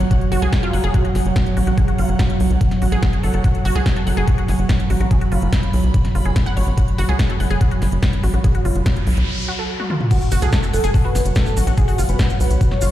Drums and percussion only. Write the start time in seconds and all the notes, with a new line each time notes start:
0.00 closed hi-hat
0.11 kick, closed hi-hat
0.21 closed hi-hat
0.32 open hi-hat
0.42 closed hi-hat
0.53 kick, snare, closed hi-hat
0.63 closed hi-hat
0.73 open hi-hat
0.84 closed hi-hat
0.94 kick, closed hi-hat
1.05 closed hi-hat
1.15 snare, open hi-hat
1.25 closed hi-hat
1.36 kick, snare, closed hi-hat
1.46 closed hi-hat
1.57 open hi-hat
1.67 closed hi-hat
1.78 kick, closed hi-hat
1.88 closed hi-hat
1.98 open hi-hat
2.09 closed hi-hat
2.19 kick, snare, closed hi-hat
2.30 closed hi-hat
2.40 open hi-hat
2.50 closed hi-hat
2.61 kick, closed hi-hat
2.71 snare, closed hi-hat
2.82 open hi-hat
2.92 closed hi-hat
3.03 kick, snare, closed hi-hat
3.13 closed hi-hat
3.23 open hi-hat
3.34 closed hi-hat
3.44 kick, closed hi-hat
3.55 closed hi-hat
3.65 open hi-hat
3.75 closed hi-hat
3.86 kick, snare, closed hi-hat
3.96 closed hi-hat
4.07 open hi-hat
4.17 closed hi-hat
4.28 kick, closed hi-hat
4.38 closed hi-hat
4.48 snare, open hi-hat
4.59 closed hi-hat
4.69 kick, snare, closed hi-hat
4.80 closed hi-hat
4.90 open hi-hat
5.00 closed hi-hat
5.11 kick, closed hi-hat
5.21 closed hi-hat
5.32 open hi-hat
5.42 closed hi-hat
5.53 kick, snare, closed hi-hat
5.63 closed hi-hat
5.73 open hi-hat
5.84 closed hi-hat
5.94 kick, closed hi-hat
6.05 snare, closed hi-hat
6.15 open hi-hat
6.25 closed hi-hat
6.36 kick, snare, closed hi-hat
6.46 closed hi-hat
6.57 open hi-hat
6.67 closed hi-hat
6.78 kick, closed hi-hat
6.88 closed hi-hat
6.98 open hi-hat
7.09 closed hi-hat
7.19 kick, snare, closed hi-hat
7.30 closed hi-hat
7.40 open hi-hat
7.50 closed hi-hat
7.61 kick, closed hi-hat
7.71 closed hi-hat
7.82 snare, open hi-hat
7.92 closed hi-hat
8.03 kick, snare, closed hi-hat
8.13 closed hi-hat
8.23 open hi-hat
8.34 closed hi-hat
8.44 kick, closed hi-hat
8.55 closed hi-hat
8.65 open hi-hat
8.76 closed hi-hat
8.86 kick, snare, closed hi-hat
8.96 closed hi-hat
9.07 open hi-hat
9.17 closed hi-hat
9.80 high tom
9.90 mid tom
10.01 mid tom
10.11 kick, closed hi-hat, crash, shaker
10.22 shaker
10.31 open hi-hat, shaker
10.42 closed hi-hat, shaker
10.52 kick, snare, closed hi-hat, shaker
10.63 shaker
10.73 open hi-hat, shaker
10.84 closed hi-hat, shaker
10.94 kick, open hi-hat, shaker
11.15 snare, open hi-hat, shaker
11.25 closed hi-hat, shaker
11.35 kick, snare, closed hi-hat, shaker
11.46 shaker
11.57 open hi-hat, shaker
11.67 closed hi-hat, shaker
11.77 kick, closed hi-hat, shaker
11.88 open hi-hat, shaker
11.98 open hi-hat, shaker
12.09 closed hi-hat, shaker
12.19 kick, snare, closed hi-hat, shaker
12.30 shaker
12.40 open hi-hat, shaker
12.51 closed hi-hat, shaker
12.61 kick, closed hi-hat, shaker
12.71 snare
12.81 open hi-hat, shaker